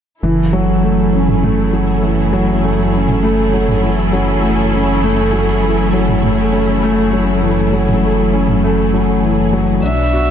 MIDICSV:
0, 0, Header, 1, 6, 480
1, 0, Start_track
1, 0, Key_signature, 3, "minor"
1, 0, Tempo, 600000
1, 186, Time_signature, 4, 2, 24, 8
1, 8244, End_track
2, 0, Start_track
2, 0, Title_t, "Violin"
2, 0, Program_c, 0, 40
2, 7867, Note_on_c, 0, 76, 98
2, 8244, Note_off_c, 0, 76, 0
2, 8244, End_track
3, 0, Start_track
3, 0, Title_t, "String section"
3, 0, Program_c, 1, 48
3, 183, Note_on_c, 1, 61, 53
3, 183, Note_on_c, 1, 64, 56
3, 184, Note_on_c, 1, 69, 68
3, 185, Note_on_c, 1, 54, 61
3, 185, Note_on_c, 1, 68, 55
3, 7833, Note_off_c, 1, 61, 0
3, 7833, Note_off_c, 1, 64, 0
3, 7833, Note_off_c, 1, 69, 0
3, 7834, Note_off_c, 1, 54, 0
3, 7834, Note_off_c, 1, 68, 0
3, 7864, Note_on_c, 1, 62, 55
3, 7865, Note_on_c, 1, 59, 62
3, 7865, Note_on_c, 1, 66, 71
3, 8244, Note_off_c, 1, 59, 0
3, 8244, Note_off_c, 1, 62, 0
3, 8244, Note_off_c, 1, 66, 0
3, 8244, End_track
4, 0, Start_track
4, 0, Title_t, "Felt piano"
4, 0, Program_c, 2, 0
4, 185, Note_on_c, 2, 52, 62
4, 321, Control_c, 2, 64, 127
4, 414, Note_off_c, 2, 52, 0
4, 424, Note_on_c, 2, 54, 74
4, 562, Note_off_c, 2, 54, 0
4, 663, Note_on_c, 2, 57, 58
4, 893, Note_off_c, 2, 57, 0
4, 903, Note_on_c, 2, 61, 61
4, 1133, Note_off_c, 2, 61, 0
4, 1146, Note_on_c, 2, 57, 74
4, 1283, Note_off_c, 2, 57, 0
4, 1385, Note_on_c, 2, 54, 51
4, 1523, Note_off_c, 2, 54, 0
4, 1622, Note_on_c, 2, 52, 59
4, 1852, Note_off_c, 2, 52, 0
4, 1863, Note_on_c, 2, 54, 76
4, 2002, Note_off_c, 2, 54, 0
4, 2104, Note_on_c, 2, 57, 60
4, 2333, Note_off_c, 2, 57, 0
4, 2346, Note_on_c, 2, 61, 57
4, 2574, Note_off_c, 2, 61, 0
4, 2586, Note_on_c, 2, 57, 80
4, 2723, Note_off_c, 2, 57, 0
4, 2826, Note_on_c, 2, 54, 62
4, 2963, Note_off_c, 2, 54, 0
4, 3067, Note_on_c, 2, 52, 60
4, 3295, Note_off_c, 2, 52, 0
4, 3305, Note_on_c, 2, 54, 73
4, 3442, Note_off_c, 2, 54, 0
4, 3546, Note_on_c, 2, 57, 54
4, 3774, Note_off_c, 2, 57, 0
4, 3786, Note_on_c, 2, 61, 58
4, 4014, Note_off_c, 2, 61, 0
4, 4025, Note_on_c, 2, 57, 74
4, 4162, Note_off_c, 2, 57, 0
4, 4267, Note_on_c, 2, 54, 59
4, 4404, Note_off_c, 2, 54, 0
4, 4507, Note_on_c, 2, 52, 58
4, 4735, Note_off_c, 2, 52, 0
4, 4746, Note_on_c, 2, 54, 76
4, 4883, Note_off_c, 2, 54, 0
4, 4985, Note_on_c, 2, 57, 65
4, 5214, Note_off_c, 2, 57, 0
4, 5223, Note_on_c, 2, 61, 56
4, 5453, Note_off_c, 2, 61, 0
4, 5464, Note_on_c, 2, 57, 82
4, 5602, Note_off_c, 2, 57, 0
4, 5705, Note_on_c, 2, 54, 58
4, 5842, Note_off_c, 2, 54, 0
4, 5943, Note_on_c, 2, 52, 65
4, 6173, Note_off_c, 2, 52, 0
4, 6183, Note_on_c, 2, 54, 75
4, 6321, Note_off_c, 2, 54, 0
4, 6426, Note_on_c, 2, 57, 64
4, 6654, Note_off_c, 2, 57, 0
4, 6666, Note_on_c, 2, 61, 62
4, 6894, Note_off_c, 2, 61, 0
4, 6906, Note_on_c, 2, 57, 75
4, 7043, Note_off_c, 2, 57, 0
4, 7147, Note_on_c, 2, 54, 61
4, 7284, Note_off_c, 2, 54, 0
4, 7386, Note_on_c, 2, 52, 57
4, 7614, Note_off_c, 2, 52, 0
4, 7625, Note_on_c, 2, 54, 78
4, 7763, Note_off_c, 2, 54, 0
4, 7864, Note_on_c, 2, 62, 67
4, 7876, Control_c, 2, 64, 0
4, 8002, Control_c, 2, 64, 127
4, 8093, Note_off_c, 2, 62, 0
4, 8105, Note_on_c, 2, 66, 59
4, 8244, Note_off_c, 2, 66, 0
4, 8244, End_track
5, 0, Start_track
5, 0, Title_t, "Detuned saw bass"
5, 0, Program_c, 3, 39
5, 183, Note_on_c, 3, 30, 73
5, 7841, Note_off_c, 3, 30, 0
5, 7864, Note_on_c, 3, 35, 76
5, 8244, Note_off_c, 3, 35, 0
5, 8244, End_track
6, 0, Start_track
6, 0, Title_t, "Drums"
6, 1025, Note_on_c, 9, 45, 51
6, 1105, Note_off_c, 9, 45, 0
6, 1146, Note_on_c, 9, 45, 53
6, 1226, Note_off_c, 9, 45, 0
6, 2467, Note_on_c, 9, 45, 46
6, 2547, Note_off_c, 9, 45, 0
6, 2945, Note_on_c, 9, 45, 53
6, 3025, Note_off_c, 9, 45, 0
6, 4865, Note_on_c, 9, 45, 51
6, 4945, Note_off_c, 9, 45, 0
6, 4985, Note_on_c, 9, 45, 53
6, 5065, Note_off_c, 9, 45, 0
6, 6306, Note_on_c, 9, 45, 45
6, 6386, Note_off_c, 9, 45, 0
6, 6784, Note_on_c, 9, 45, 45
6, 6864, Note_off_c, 9, 45, 0
6, 8244, End_track
0, 0, End_of_file